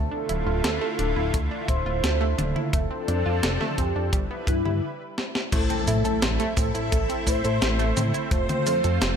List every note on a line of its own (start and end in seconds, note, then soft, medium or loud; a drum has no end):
0.00 2.71 D3 medium
0.00 2.71 A3 medium
0.00 2.71 E4 medium
0.00 2.70 F4 medium
0.00 0.85 A4 loud
0.12 0.22 D4 medium
0.29 0.45 D1 loud
0.29 0.45 E4 medium
0.29 closed hi-hat medium
0.46 0.62 D1 medium
0.46 0.62 F4 medium
0.64 0.79 D2 medium
0.64 0.74 A4 medium
0.64 snare loud
0.64 closed hi-hat medium
0.81 0.92 A3 loud
0.99 1.14 D1 medium
0.99 1.09 D4 medium
0.99 1.38 A4 medium
0.99 closed hi-hat medium
1.16 1.32 D1 medium
1.16 1.27 E4 medium
1.34 1.49 D2 medium
1.34 1.44 A3 medium
1.34 kick loud
1.34 closed hi-hat medium
1.51 1.62 D4 medium
1.68 1.84 D1 loud
1.68 1.84 E4 medium
1.68 2.59 C5 loud
1.68 kick loud
1.68 closed hi-hat medium
1.86 2.02 D1 medium
1.86 2.02 F4 medium
2.03 2.35 D2 loud
2.03 2.14 A4 medium
2.03 snare loud
2.03 closed hi-hat medium
2.21 2.31 A3 loud
2.38 2.54 D1 loud
2.38 2.49 D4 medium
2.38 closed hi-hat medium
2.38 mid tom medium
2.56 2.66 E4 medium
2.56 mid tom medium
2.73 2.89 F1 loud
2.73 4.11 F3 medium
2.73 2.84 A3 medium
2.73 4.11 C4 medium
2.73 4.81 D4 medium
2.73 3.80 A4 loud
2.73 4.11 A4 medium
2.73 kick loud
2.73 closed hi-hat medium
2.91 3.01 C4 medium
3.08 3.24 F2 loud
3.08 3.24 D4 medium
3.08 closed hi-hat medium
3.26 3.41 F2 medium
3.26 3.41 F4 medium
3.43 3.59 F1 medium
3.43 3.54 A4 medium
3.43 snare loud
3.43 closed hi-hat medium
3.61 3.71 A3 loud
3.61 snare soft
3.61 mid tom medium
3.78 3.93 F2 medium
3.78 3.88 C4 medium
3.78 4.17 G4 medium
3.78 kick medium
3.78 closed hi-hat medium
3.95 4.11 F2 medium
3.95 4.06 D4 medium
4.12 4.28 G1 loud
4.12 4.82 G3 medium
4.12 4.23 G3 medium
4.12 4.82 E4 medium
4.12 4.82 B4 medium
4.12 kick loud
4.12 closed hi-hat medium
4.31 4.41 B3 medium
4.47 4.63 G2 loud
4.47 4.83 E4 loud
4.47 4.58 B4 medium
4.47 kick loud
4.47 closed hi-hat medium
4.65 4.81 G2 medium
4.65 4.76 E4 medium
4.65 mid tom medium
5.18 snare medium
5.35 snare medium
5.52 5.68 A1 loud
5.52 9.16 A3 medium
5.52 7.41 A3 medium
5.52 5.63 A3 medium
5.52 9.16 C4 medium
5.52 8.29 E4 medium
5.52 7.41 E4 medium
5.52 6.43 A4 loud
5.52 7.41 C5 medium
5.52 kick loud
5.52 closed hi-hat medium
5.52 crash loud
5.52 impact medium
5.52 shaker soft
5.70 5.80 C4 medium
5.70 closed hi-hat soft
5.70 shaker soft
5.88 6.03 A2 loud
5.88 6.03 E4 medium
5.88 open hi-hat medium
5.88 shaker medium
6.05 6.20 A2 medium
6.05 6.20 A4 medium
6.05 closed hi-hat soft
6.05 shaker soft
6.22 6.38 A1 medium
6.22 6.33 C5 medium
6.22 snare loud
6.22 closed hi-hat medium
6.22 shaker soft
6.40 6.50 A3 loud
6.40 closed hi-hat soft
6.40 shaker soft
6.57 6.73 A2 medium
6.57 6.67 C4 medium
6.57 7.27 A4 medium
6.57 7.29 A4 loud
6.57 kick loud
6.57 open hi-hat medium
6.57 shaker medium
6.75 6.90 A2 medium
6.75 6.85 E4 medium
6.75 closed hi-hat soft
6.75 shaker soft
6.92 7.08 A1 loud
6.92 7.02 A3 medium
6.92 kick loud
6.92 closed hi-hat medium
6.92 shaker soft
7.09 7.20 C4 medium
7.09 closed hi-hat soft
7.09 shaker soft
7.27 7.42 A2 loud
7.27 7.42 E4 medium
7.27 8.18 C5 loud
7.27 kick medium
7.27 open hi-hat medium
7.27 shaker medium
7.44 7.60 A2 medium
7.44 7.58 A3 medium
7.44 7.58 E4 medium
7.44 7.60 A4 medium
7.44 7.58 C5 medium
7.44 closed hi-hat soft
7.44 shaker soft
7.62 7.93 A1 loud
7.62 8.27 A3 medium
7.62 8.27 E4 medium
7.62 7.72 C5 medium
7.62 8.27 C5 loud
7.62 snare loud
7.62 closed hi-hat medium
7.62 shaker soft
7.79 7.89 A3 loud
7.79 closed hi-hat soft
7.79 shaker soft
7.97 8.12 A2 loud
7.97 8.07 C4 medium
7.97 open hi-hat medium
7.97 mid tom medium
7.97 shaker medium
8.14 8.24 E4 medium
8.14 closed hi-hat soft
8.14 shaker soft
8.31 8.47 F1 loud
8.31 8.42 A3 medium
8.31 9.16 A3 medium
8.31 9.16 F4 medium
8.31 9.16 C5 loud
8.31 kick loud
8.31 closed hi-hat medium
8.31 shaker soft
8.49 8.59 C4 medium
8.49 closed hi-hat soft
8.49 mid tom medium
8.49 shaker soft
8.66 8.82 F2 loud
8.66 8.82 F4 medium
8.66 open hi-hat medium
8.66 shaker medium
8.84 9.00 F2 medium
8.84 8.99 A4 medium
8.84 closed hi-hat soft
8.84 shaker soft
9.01 9.16 F1 medium
9.01 9.12 C5 medium
9.01 snare loud
9.01 closed hi-hat medium
9.01 shaker soft